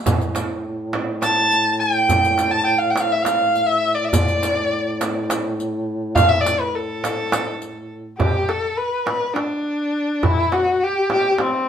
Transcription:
0.05 duduk A2, riq, frame drum, darbuka dum
0.21 riq
0.35 riq, darbuka tek, frame drum
0.93 darbuka tek, frame drum
1.22 kamancheh A5, riq, darbuka tek, frame drum
1.51 riq, darbuka ka
1.80 kamancheh G5
2.09 riq, darbuka dum, frame drum
2.25 riq
2.38 riq, darbuka tek, frame drum
2.51 kamancheh A5
2.62 kamancheh G5 A5
2.78 kamancheh F5
2.90 kamancheh G5
2.96 riq, darbuka tek, frame drum
3.01 kamancheh F5
3.12 kamancheh E5
3.23 kamancheh F5, riq, darbuka tek, frame drum
3.55 riq, darbuka ka
3.67 kamancheh E5
3.95 kamancheh D5
4.05 kamancheh D5 E5
4.13 duduk A2, riq, darbuka dum, frame drum
4.28 riq
4.43 riq, frame drum
5.01 riq, darbuka tek, frame drum
5.30 riq, darbuka tek, frame drum
5.58 riq, darbuka ka
6.16 kamancheh F5, riq, darbuka dum, frame drum
6.29 kamancheh E5
6.41 kamancheh D5
6.46 riq, darbuka tek, frame drum
6.61 kamancheh B4
6.76 kamancheh A4
7.04 riq, darbuka tek, frame drum
7.32 riq, darbuka tek, frame drum
7.62 riq, darbuka ka
8.18 kamancheh G4, frame drum, darbuka dum
8.49 kamancheh A4, darbuka tek
8.77 kamancheh B4
9.06 kamancheh B4, darbuka tek, frame drum
9.34 kamancheh D4, darbuka tek, frame drum
10.23 kamancheh E4, frame drum, darbuka dum
10.52 kamancheh F#4, darbuka tek, frame drum
10.83 kamancheh G4
11.10 kamancheh G4, darbuka tek, frame drum
11.38 kamancheh C4, darbuka tek, frame drum

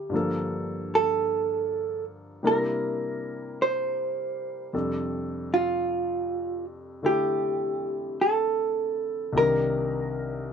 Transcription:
Already playing: grand piano D2 D3 F3 C4 E5, hollow-body jazz guitar G4
0.10 grand piano G2 D3 F3
0.14 grand piano A#3 A4
0.95 hollow-body jazz guitar A4
2.43 grand piano C3 G3 A#3 D4 E4 A#4
2.47 hollow-body jazz guitar A#4
3.62 hollow-body jazz guitar C5
4.73 grand piano F2 C3 G3 D4 A4
5.54 hollow-body jazz guitar F4
7.03 grand piano D3 A3 E4 A4, hollow-body jazz guitar G4
8.21 hollow-body jazz guitar A4
9.33 grand piano C2 C3 D#3
9.37 grand piano D4 A#4, hollow-body jazz guitar A#4

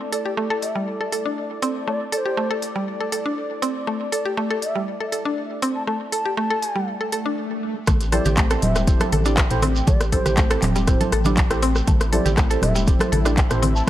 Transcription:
Already playing: analog synth pad A3 E4 A4 D5
0.12 synth arpeggio sound A4, bansuri D5, open hi-hat
0.26 synth arpeggio sound G4
0.37 synth arpeggio sound A3
0.50 synth arpeggio sound A4
0.62 bansuri E5, open hi-hat
0.75 synth arpeggio sound G3
1.01 synth arpeggio sound A4
1.12 synth arpeggio sound A4, open hi-hat
1.26 synth arpeggio sound D4
1.62 synth arpeggio sound C4, open hi-hat
1.88 synth arpeggio sound A3, bansuri D5
2.12 synth arpeggio sound A4, bansuri D5, open hi-hat
2.18 bansuri C5
2.26 synth arpeggio sound G4
2.37 synth arpeggio sound A3
2.51 synth arpeggio sound A4
2.62 open hi-hat
2.76 synth arpeggio sound G3
3.00 synth arpeggio sound A4
3.12 synth arpeggio sound A4, open hi-hat
3.26 synth arpeggio sound D4
3.62 synth arpeggio sound C4, open hi-hat
3.87 synth arpeggio sound A3
4.12 synth arpeggio sound A4, bansuri D5, open hi-hat
4.25 synth arpeggio sound G4
4.37 synth arpeggio sound A3
4.50 synth arpeggio sound A4
4.62 bansuri E5, open hi-hat
4.75 synth arpeggio sound G3
5.00 synth arpeggio sound A4
5.12 synth arpeggio sound A4, open hi-hat
5.25 synth arpeggio sound D4
5.62 synth arpeggio sound C4, open hi-hat
5.76 bansuri A5
5.87 synth arpeggio sound A3, bansuri A5
6.12 synth arpeggio sound A4, bansuri A5, open hi-hat
6.26 synth arpeggio sound G4
6.37 synth arpeggio sound A3, bansuri A5
6.50 synth arpeggio sound A4
6.62 open hi-hat
6.76 synth arpeggio sound G3
6.88 swell
7.01 synth arpeggio sound A4
7.12 synth arpeggio sound A4, open hi-hat
7.26 synth arpeggio sound D4
7.87 analog synth bass A1, analog synth pad A3 C4 G4, synth arpeggio sound A3, kick, cross-stick, closed hi-hat, low conga, shekere
8.01 closed hi-hat, shekere
8.12 synth stab C4 E4 G4 A4 C5, synth arpeggio sound A4, bansuri D5, cross-stick, open hi-hat, high conga
8.25 analog synth bass A1, synth arpeggio sound G4, closed hi-hat, low conga, shekere
8.37 synth arpeggio sound A3, kick, clap, closed hi-hat, shekere
8.51 synth stab C4 E4 G4 A4 C5, synth arpeggio sound A4, cross-stick, closed hi-hat, shekere
8.62 analog synth bass E1, bansuri E5, mid tom, open hi-hat, high conga
8.76 synth arpeggio sound G3, cross-stick, closed hi-hat, shekere
8.87 synth stab C4 E4 G4 A4 C5, kick, closed hi-hat, shekere
9.00 synth arpeggio sound A4, cross-stick, closed hi-hat, high conga, shekere
9.12 analog synth bass A1, synth arpeggio sound A4, open hi-hat, high conga, low conga
9.25 synth stab C4 E4 G4 A4 D5, synth arpeggio sound D4, closed hi-hat, shekere
9.37 kick, cross-stick, clap, closed hi-hat, shekere
9.50 analog synth bass A1, synth stab C4 E4 G4 A4 C5, closed hi-hat, mid tom, shekere
9.62 synth arpeggio sound C4, cross-stick, open hi-hat, low conga
9.76 shekere
9.87 analog synth bass A1, synth arpeggio sound A3, bansuri D5, kick, closed hi-hat, low conga, shekere
10.01 cross-stick, closed hi-hat, shekere
10.12 synth stab C4 E4 G4 A4 C5, synth arpeggio sound A4, bansuri C5, kick, open hi-hat, high conga
10.26 analog synth bass A1, synth arpeggio sound G4, cross-stick, closed hi-hat, low conga, shekere
10.37 synth arpeggio sound A3, kick, clap, closed hi-hat, shekere
10.51 synth stab C4 E4 G4 A4 C5, synth arpeggio sound A4, cross-stick, closed hi-hat, shekere
10.62 analog synth bass E1, clap, mid tom, open hi-hat, high conga
10.76 synth arpeggio sound G3, closed hi-hat, shekere
10.87 synth stab C4 E4 G4 A4 C5, kick, cross-stick, closed hi-hat, mid tom, shekere
11.01 synth arpeggio sound A4, closed hi-hat, high conga, shekere
11.12 analog synth bass A1, synth arpeggio sound A4, cross-stick, open hi-hat, high conga
11.25 synth stab C4 E4 G4 A4 D5, synth arpeggio sound D4, closed hi-hat, high conga, low conga, shekere
11.37 kick, clap, closed hi-hat, shekere
11.51 analog synth bass A1, synth stab C4 E4 G4 A4 C5, cross-stick, closed hi-hat, shekere
11.62 synth arpeggio sound C4, open hi-hat
11.75 cross-stick, shekere
11.88 analog synth bass A1, synth arpeggio sound A3, analog synth pad E4, kick, closed hi-hat, low conga, shekere
12.00 cross-stick, closed hi-hat, shekere
12.13 synth stab C4 E4 G4 A4 C5, synth arpeggio sound A4, bansuri D5, open hi-hat, high conga
12.26 analog synth bass A1, synth arpeggio sound G4, closed hi-hat, low conga, shekere
12.37 synth arpeggio sound A3, kick, cross-stick, clap, closed hi-hat, shekere
12.50 synth stab C4 E4 G4 A4 C5, synth arpeggio sound A4, closed hi-hat, shekere
12.62 analog synth bass E1, bansuri E5, cross-stick, mid tom, open hi-hat, high conga
12.75 synth arpeggio sound G3, closed hi-hat, shekere
12.87 synth stab C4 E4 G4 A4 C5, kick, closed hi-hat, shekere
12.99 synth arpeggio sound A4, cross-stick, closed hi-hat, high conga, shekere
13.12 analog synth bass A1, synth arpeggio sound A4, open hi-hat, high conga, low conga
13.25 synth stab C4 E4 G4 A4 D5, synth arpeggio sound D4, cross-stick, closed hi-hat, shekere
13.37 kick, clap, closed hi-hat, shekere
13.50 analog synth bass A1, synth stab C4 E4 G4 A4 C5, cross-stick, closed hi-hat, mid tom, shekere
13.62 synth arpeggio sound C4, open hi-hat, low conga
13.75 bansuri A5, shekere

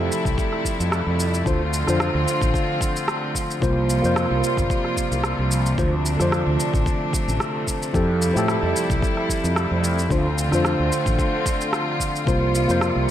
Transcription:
Already playing: string section C3 F3 G3 A3 E4, tine electric piano F3 E4 G4 A4
0.12 shaker
0.25 fretless electric bass C2, kick, shaker
0.38 kick, shaker
0.52 cross-stick
0.65 kick, shaker
0.80 fretless electric bass F2, shaker
0.92 cross-stick, shaker
1.06 fretless electric bass F2
1.20 shaker
1.34 shaker
1.44 fretless electric bass D2, tine electric piano D3 D4 F4 C5, string section D3 C4 F4, kick, shaker
1.74 shaker
1.84 fretless electric bass F2, tine electric piano D3 D4 F4, cross-stick, shaker
1.90 tine electric piano C5
2.00 cross-stick, shaker
2.14 fretless electric bass D2
2.28 shaker
2.41 fretless electric bass A1, kick, shaker
2.54 kick, shaker
2.81 kick, shaker
2.96 shaker
3.08 cross-stick, shaker
3.35 kick, shaker
3.50 shaker
3.60 fretless electric bass C2, tine electric piano C3 A#3 F4 C5, string section C3 G3 A#3 F4, kick, shaker
3.90 shaker
4.00 fretless electric bass F2, tine electric piano C3 A#3 F4
4.04 tine electric piano C5, shaker
4.16 cross-stick, shaker
4.31 fretless electric bass C2
4.44 shaker
4.57 fretless electric bass G1, kick, shaker
4.70 kick, shaker
4.84 cross-stick
4.97 kick, shaker
5.11 fretless electric bass C2, shaker
5.24 cross-stick, shaker
5.39 fretless electric bass C2
5.51 shaker
5.66 shaker
5.77 fretless electric bass D2, tine electric piano D3 A3 F4 C5, string section A3 D4, kick, shaker
6.06 shaker
6.17 fretless electric bass F2, tine electric piano D3 A3 F4, cross-stick, shaker
6.22 tine electric piano C5
6.32 cross-stick, shaker
6.46 fretless electric bass D2
6.60 shaker
6.73 fretless electric bass A1, kick, shaker
6.86 kick, shaker
7.13 kick, shaker
7.28 fretless electric bass A1, shaker
7.40 cross-stick, shaker
7.67 kick, shaker
7.82 shaker
7.93 fretless electric bass F2, tine electric piano F3 E4 G4 A4, string section G3 E4, kick, shaker
8.22 shaker
8.33 fretless electric bass A2, tine electric piano F3 E4 G4, shaker
8.38 tine electric piano A4
8.48 cross-stick, shaker
8.63 fretless electric bass F2
8.76 shaker
8.90 fretless electric bass C2, kick, shaker
9.02 kick, shaker
9.17 cross-stick
9.29 kick, shaker
9.44 fretless electric bass F2, shaker
9.56 cross-stick, shaker
9.71 fretless electric bass F2
9.84 shaker
9.99 shaker
10.09 fretless electric bass D2, tine electric piano D3 D4 F4 C5, string section D3 A3 C4 F4, kick, shaker
10.38 shaker
10.49 fretless electric bass F2, tine electric piano D3 D4 F4, cross-stick, shaker
10.55 tine electric piano C5
10.65 cross-stick, shaker
10.79 fretless electric bass D2
10.92 shaker
11.06 fretless electric bass A1, kick, shaker
11.19 kick, shaker
11.46 kick, shaker
11.61 shaker
11.73 cross-stick, shaker
12.00 kick, shaker
12.16 shaker
12.25 fretless electric bass C2, tine electric piano C3 A#3 F4 C5, string section C3 F3 G3, kick, shaker
12.55 shaker
12.66 fretless electric bass F2, tine electric piano C3 A#3 F4, shaker
12.71 tine electric piano C5
12.81 cross-stick, shaker
12.96 fretless electric bass C2

